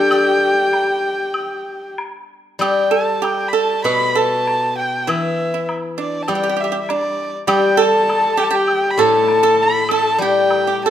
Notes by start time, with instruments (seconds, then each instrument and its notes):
Already playing: guzheng G3 D4 G4 A4, horsehead fiddle G4, erhu G5
0.11 guzheng D5, high woodblock
0.73 low woodblock
1.34 high woodblock
1.98 low woodblock
2.59 guzheng G3, pipa G4, erhu G5, high woodblock
2.91 pipa A4, erhu A5
3.22 pipa G4, erhu G5, high woodblock, low woodblock
3.48 erhu B5
3.53 pipa A4, erhu A5
3.84 guzheng B2, pipa B4, erhu B5, high woodblock
4.15 pipa A4, erhu A5
4.47 low woodblock
4.78 erhu G5
5.01 erhu G5
5.07 guzheng E3, pipa E4, erhu E5, high woodblock
5.54 pipa E4
5.69 high woodblock, low woodblock
5.98 pipa D4, erhu D5
6.22 erhu A5
6.28 guzheng G3, pipa G4, erhu G5, high woodblock
6.35 pipa G4
6.43 pipa G4
6.49 pipa G4
6.57 pipa G4, erhu E5
6.64 pipa G4
6.72 pipa G4
6.82 erhu E5
6.89 pipa D4, erhu D5, low woodblock
7.47 guzheng G3, pipa G4, horsehead fiddle G4, erhu G5, high woodblock
7.77 pipa A4, horsehead fiddle A4
7.82 erhu A5
8.09 high woodblock, low woodblock
8.37 pipa G4, erhu G5
8.44 erhu A5
8.50 pipa G4, horsehead fiddle G4
8.55 erhu G5
8.68 high woodblock
8.90 erhu B5
8.97 guzheng A2, pipa A4, horsehead fiddle A4, erhu A5
9.28 low woodblock
9.43 pipa A4
9.63 erhu B5
9.88 horsehead fiddle A4, pipa A4, high woodblock
9.93 erhu A5
10.18 guzheng G3, horsehead fiddle G4, pipa G4
10.24 erhu G5
10.50 high woodblock, low woodblock
10.67 pipa G4
10.86 pipa A4, erhu A5